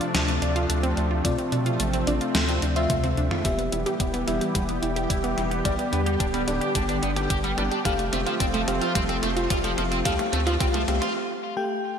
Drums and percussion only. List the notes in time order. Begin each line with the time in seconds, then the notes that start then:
0.01 closed hi-hat
0.15 snare, closed hi-hat
0.28 closed hi-hat
0.42 closed hi-hat
0.56 closed hi-hat
0.70 closed hi-hat
0.84 closed hi-hat
0.97 closed hi-hat
1.25 kick, closed hi-hat
1.39 closed hi-hat
1.52 closed hi-hat
1.66 closed hi-hat
1.80 closed hi-hat
1.93 closed hi-hat
2.07 closed hi-hat
2.21 closed hi-hat
2.35 snare, closed hi-hat
2.49 closed hi-hat
2.62 closed hi-hat
2.76 closed hi-hat
2.90 kick, closed hi-hat, high tom
3.04 closed hi-hat, high tom
3.17 closed hi-hat
3.31 mid tom
3.45 kick, closed hi-hat, mid tom
3.59 closed hi-hat
3.72 closed hi-hat
3.86 closed hi-hat, mid tom
4.00 kick, closed hi-hat
4.14 closed hi-hat
4.28 closed hi-hat, mid tom
4.41 closed hi-hat
4.55 kick, closed hi-hat, mid tom
4.69 closed hi-hat
4.83 closed hi-hat
4.96 closed hi-hat
5.10 kick, closed hi-hat
5.24 closed hi-hat
5.38 closed hi-hat, mid tom
5.51 closed hi-hat
5.65 kick, closed hi-hat, mid tom
5.79 closed hi-hat
5.93 closed hi-hat
6.06 closed hi-hat
6.20 kick, closed hi-hat
6.34 closed hi-hat
6.48 closed hi-hat, mid tom
6.61 closed hi-hat
6.75 kick, closed hi-hat, mid tom
6.89 closed hi-hat
7.03 closed hi-hat
7.16 closed hi-hat, mid tom
7.30 kick, closed hi-hat
7.44 closed hi-hat
7.58 closed hi-hat, mid tom
7.72 closed hi-hat
7.85 kick, closed hi-hat, mid tom
7.99 closed hi-hat
8.13 closed hi-hat, mid tom
8.27 closed hi-hat
8.40 kick, closed hi-hat, mid tom
8.54 closed hi-hat
8.68 closed hi-hat, mid tom
8.82 closed hi-hat
8.95 kick, closed hi-hat, mid tom
9.09 closed hi-hat
9.23 closed hi-hat, mid tom
9.37 closed hi-hat
9.50 kick, closed hi-hat, mid tom
9.64 closed hi-hat
9.78 closed hi-hat, mid tom
9.92 closed hi-hat
10.05 kick, closed hi-hat, mid tom
10.19 closed hi-hat, mid tom
10.33 closed hi-hat, mid tom
10.47 closed hi-hat, mid tom
10.60 kick, closed hi-hat, mid tom
10.74 closed hi-hat, mid tom
10.88 closed hi-hat, mid tom
11.02 closed hi-hat, mid tom